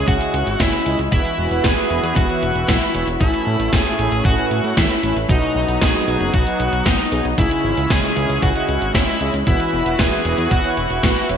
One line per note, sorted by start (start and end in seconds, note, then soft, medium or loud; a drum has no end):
0.00 0.18 C#3 medium
0.00 1.10 G#3 medium
0.00 0.18 C#4 medium
0.00 1.10 C#4 medium
0.00 0.18 E4 medium
0.00 5.25 E4 medium
0.00 0.18 G#4 medium
0.00 0.18 C#5 loud
0.08 0.17 C#2 medium
0.08 0.61 F#4 loud
0.08 kick loud
0.08 closed hi-hat medium
0.21 0.36 C#3 medium
0.21 0.36 C#4 medium
0.21 0.36 E4 medium
0.21 0.36 G#4 medium
0.21 0.36 D#5 loud
0.21 closed hi-hat soft
0.34 0.43 C#2 medium
0.34 closed hi-hat medium
0.47 0.57 G#1 medium
0.47 closed hi-hat soft
0.60 0.70 G#1 loud
0.60 0.75 C#3 medium
0.60 0.75 C#4 medium
0.60 0.75 E4 medium
0.60 0.96 E4 medium
0.60 0.75 G#4 medium
0.60 0.75 C#5 medium
0.60 kick loud
0.60 snare loud
0.60 closed hi-hat medium
0.73 closed hi-hat soft
0.86 0.96 C#2 medium
0.86 1.01 C#4 medium
0.86 1.01 E4 medium
0.86 1.01 G#4 medium
0.86 1.01 D#5 loud
0.86 closed hi-hat medium
0.99 1.09 C#2 medium
0.99 closed hi-hat soft
1.12 1.22 E1 loud
1.12 3.19 E3 medium
1.12 1.48 E3 medium
1.12 1.48 B3 medium
1.12 1.66 E4 medium
1.12 1.48 E4 medium
1.12 3.19 F#4 medium
1.12 1.48 F#4 medium
1.12 3.19 B4 medium
1.12 1.48 B4 loud
1.12 kick loud
1.12 closed hi-hat medium
1.25 closed hi-hat soft
1.38 1.48 E1 medium
1.51 1.61 E1 medium
1.51 1.87 E3 medium
1.51 1.87 B3 medium
1.51 1.87 E4 medium
1.51 1.87 F#4 medium
1.51 1.87 B4 medium
1.51 closed hi-hat soft
1.64 1.74 E1 loud
1.64 2.12 G#4 loud
1.64 kick loud
1.64 snare loud
1.64 closed hi-hat medium
1.77 closed hi-hat soft
1.90 2.00 E1 medium
1.90 2.26 E3 medium
1.90 2.26 B3 medium
1.90 2.26 E4 medium
1.90 2.26 F#4 medium
1.90 2.26 B4 loud
1.90 closed hi-hat medium
2.03 2.13 E2 medium
2.03 closed hi-hat soft
2.16 2.26 E1 loud
2.16 2.70 F#4 loud
2.16 kick loud
2.16 closed hi-hat medium
2.29 2.45 E3 medium
2.29 2.45 B3 medium
2.29 2.45 E4 medium
2.29 2.45 F#4 medium
2.29 2.45 C#5 medium
2.29 closed hi-hat soft
2.43 2.52 E1 medium
2.43 closed hi-hat medium
2.55 2.65 E1 medium
2.55 closed hi-hat soft
2.68 2.78 B1 loud
2.68 2.84 E3 medium
2.68 2.84 B3 medium
2.68 2.84 E4 medium
2.68 3.05 E4 medium
2.68 2.84 F#4 medium
2.68 2.84 B4 medium
2.68 kick loud
2.68 snare loud
2.68 closed hi-hat medium
2.82 closed hi-hat soft
2.94 3.04 E1 medium
2.94 3.10 B3 medium
2.94 3.10 E4 medium
2.94 3.10 F#4 medium
2.94 3.10 C#5 loud
2.94 closed hi-hat medium
3.07 3.17 E1 medium
3.07 closed hi-hat soft
3.20 3.30 A1 loud
3.20 3.57 A2 medium
3.20 5.27 A3 medium
3.20 3.57 A3 medium
3.20 5.27 C#4 medium
3.20 3.57 C#4 medium
3.20 3.74 E4 medium
3.20 3.57 E4 medium
3.20 3.57 A4 loud
3.20 kick loud
3.20 closed hi-hat medium
3.34 closed hi-hat soft
3.47 3.56 A2 medium
3.60 3.69 A1 medium
3.60 3.96 A2 medium
3.60 3.96 A3 medium
3.60 3.96 C#4 medium
3.60 3.96 E4 medium
3.60 3.96 A4 medium
3.60 closed hi-hat soft
3.73 3.83 A1 loud
3.73 4.24 G#4 loud
3.73 kick loud
3.73 snare loud
3.73 closed hi-hat medium
3.86 closed hi-hat soft
3.99 4.09 A1 medium
3.99 4.35 A2 medium
3.99 4.35 A3 medium
3.99 4.35 C#4 medium
3.99 4.35 E4 medium
3.99 4.35 A4 loud
3.99 closed hi-hat medium
4.12 4.22 A1 medium
4.12 closed hi-hat soft
4.25 4.35 A1 loud
4.25 4.73 F#4 loud
4.25 kick loud
4.25 closed hi-hat medium
4.38 4.54 A2 medium
4.38 4.54 A3 medium
4.38 4.54 C#4 medium
4.38 4.54 E4 medium
4.38 4.54 B4 loud
4.38 closed hi-hat soft
4.51 4.61 A1 medium
4.51 closed hi-hat medium
4.64 4.74 A2 medium
4.64 closed hi-hat soft
4.77 4.87 E2 loud
4.77 4.93 A2 medium
4.77 4.93 A3 medium
4.77 4.93 C#4 medium
4.77 4.93 E4 medium
4.77 5.14 E4 medium
4.77 4.93 A4 medium
4.77 kick loud
4.77 snare loud
4.77 closed hi-hat medium
4.90 closed hi-hat soft
5.03 5.13 A1 medium
5.03 5.19 A3 medium
5.03 5.19 C#4 medium
5.03 5.19 E4 medium
5.03 5.19 B4 loud
5.03 closed hi-hat medium
5.16 5.26 A1 medium
5.16 closed hi-hat soft
5.29 5.39 B1 loud
5.29 5.65 B2 medium
5.29 7.36 F#3 medium
5.29 5.65 F#3 medium
5.29 7.36 B3 medium
5.29 5.65 B3 medium
5.29 7.36 D#4 medium
5.29 5.65 D#4 medium
5.29 5.78 D#4 medium
5.29 5.65 F#4 loud
5.29 kick loud
5.29 closed hi-hat medium
5.42 closed hi-hat soft
5.55 5.65 B1 medium
5.68 5.78 B1 medium
5.68 6.04 B2 medium
5.68 6.04 F#3 medium
5.68 6.04 B3 medium
5.68 6.04 D#4 medium
5.68 6.04 F#4 medium
5.68 closed hi-hat soft
5.82 5.91 B1 medium
5.82 6.30 G#4 medium
5.82 kick loud
5.82 snare loud
5.82 closed hi-hat medium
5.95 closed hi-hat soft
6.07 6.17 B1 medium
6.07 6.44 B2 medium
6.07 6.44 F#3 medium
6.07 6.44 B3 medium
6.07 6.44 D#4 medium
6.07 6.44 F#4 medium
6.07 closed hi-hat medium
6.20 6.30 F#1 medium
6.20 closed hi-hat soft
6.34 6.43 B1 loud
6.34 6.82 F#4 loud
6.34 kick loud
6.34 closed hi-hat medium
6.47 6.62 B2 medium
6.47 6.62 F#3 medium
6.47 6.62 B3 medium
6.47 6.62 D#4 medium
6.47 6.62 G#4 medium
6.47 closed hi-hat soft
6.60 6.69 B1 medium
6.60 closed hi-hat medium
6.73 6.83 B1 medium
6.73 closed hi-hat soft
6.86 6.96 A1 loud
6.86 7.01 B2 medium
6.86 7.01 F#3 medium
6.86 7.01 B3 medium
6.86 7.01 D#4 medium
6.86 7.22 D#4 medium
6.86 7.01 F#4 medium
6.86 kick loud
6.86 snare loud
6.86 closed hi-hat medium
6.99 closed hi-hat soft
7.12 7.22 B1 medium
7.12 7.27 F#3 medium
7.12 7.27 B3 medium
7.12 7.27 D#4 medium
7.12 7.27 G#4 loud
7.12 closed hi-hat medium
7.25 7.35 B1 medium
7.25 closed hi-hat soft
7.38 7.48 C#2 loud
7.38 7.74 C#3 medium
7.38 9.45 G#3 medium
7.38 7.74 C#4 medium
7.38 9.45 C#4 medium
7.38 7.74 E4 medium
7.38 11.37 E4 medium
7.38 7.87 E4 medium
7.38 7.74 G#4 medium
7.38 7.74 C#5 medium
7.38 kick loud
7.38 closed hi-hat medium
7.51 closed hi-hat soft
7.64 7.74 G#1 medium
7.77 7.87 C#2 medium
7.77 8.13 C#3 medium
7.77 8.13 C#4 medium
7.77 8.13 E4 medium
7.77 8.13 G#4 medium
7.77 8.13 C#5 medium
7.77 closed hi-hat soft
7.90 8.00 C#2 loud
7.90 8.39 G#4 medium
7.90 kick loud
7.90 snare loud
7.90 closed hi-hat medium
8.03 closed hi-hat soft
8.16 8.26 C#2 medium
8.16 8.52 C#3 medium
8.16 8.52 C#4 medium
8.16 8.52 E4 medium
8.16 8.52 G#4 medium
8.16 8.52 C#5 loud
8.16 closed hi-hat medium
8.29 8.39 C#2 medium
8.29 closed hi-hat soft
8.42 8.52 C#2 loud
8.42 8.91 F#4 medium
8.42 kick loud
8.42 closed hi-hat medium
8.55 8.71 C#3 medium
8.55 8.71 C#4 medium
8.55 8.71 E4 medium
8.55 8.71 G#4 medium
8.55 8.71 D#5 loud
8.55 closed hi-hat soft
8.69 8.78 C#2 medium
8.69 closed hi-hat medium
8.82 8.91 G#1 medium
8.82 closed hi-hat soft
8.95 9.04 G#1 loud
8.95 9.10 C#3 medium
8.95 9.10 C#4 medium
8.95 9.10 E4 medium
8.95 9.31 E4 medium
8.95 9.10 G#4 medium
8.95 9.10 C#5 medium
8.95 kick loud
8.95 snare loud
8.95 closed hi-hat medium
9.08 closed hi-hat soft
9.21 9.31 C#2 medium
9.21 9.36 C#4 medium
9.21 9.36 E4 medium
9.21 9.36 G#4 medium
9.21 9.36 D#5 loud
9.21 closed hi-hat medium
9.34 9.44 C#2 medium
9.34 closed hi-hat soft
9.47 9.57 E1 loud
9.47 11.37 E3 medium
9.47 9.83 E3 medium
9.47 9.83 B3 medium
9.47 9.83 E4 medium
9.47 10.01 E4 medium
9.47 11.37 F#4 medium
9.47 9.83 F#4 medium
9.47 11.37 B4 medium
9.47 9.83 B4 loud
9.47 kick loud
9.47 closed hi-hat medium
9.60 closed hi-hat soft
9.73 9.83 E1 medium
9.86 9.96 E1 medium
9.86 10.22 E3 medium
9.86 10.22 B3 medium
9.86 10.22 E4 medium
9.86 10.22 F#4 medium
9.86 10.22 B4 medium
9.86 closed hi-hat soft
9.99 10.09 E1 medium
9.99 10.51 G#4 medium
9.99 kick loud
9.99 snare loud
9.99 closed hi-hat medium
10.12 closed hi-hat soft
10.25 10.35 E1 medium
10.25 10.61 E3 medium
10.25 10.61 B3 medium
10.25 10.61 E4 medium
10.25 10.61 F#4 medium
10.25 10.61 B4 medium
10.25 closed hi-hat medium
10.38 10.48 E2 medium
10.38 closed hi-hat soft
10.51 10.61 E1 loud
10.51 11.26 F#4 medium
10.51 kick loud
10.51 closed hi-hat medium
10.64 10.80 E3 medium
10.64 10.80 B3 medium
10.64 10.80 E4 medium
10.64 10.80 F#4 medium
10.64 10.80 C#5 medium
10.64 closed hi-hat soft
10.77 10.87 E1 medium
10.77 closed hi-hat medium
10.90 11.00 E1 medium
10.90 closed hi-hat soft
11.03 11.13 B1 loud
11.03 11.19 E3 medium
11.03 11.19 B3 medium
11.03 11.19 E4 medium
11.03 11.19 F#4 medium
11.03 11.19 B4 medium
11.03 kick loud
11.03 snare loud
11.03 closed hi-hat medium
11.16 closed hi-hat soft
11.29 11.37 E1 medium
11.29 11.37 B3 medium
11.29 11.37 E4 medium
11.29 11.37 F#4 medium
11.29 11.37 C#5 loud
11.29 closed hi-hat medium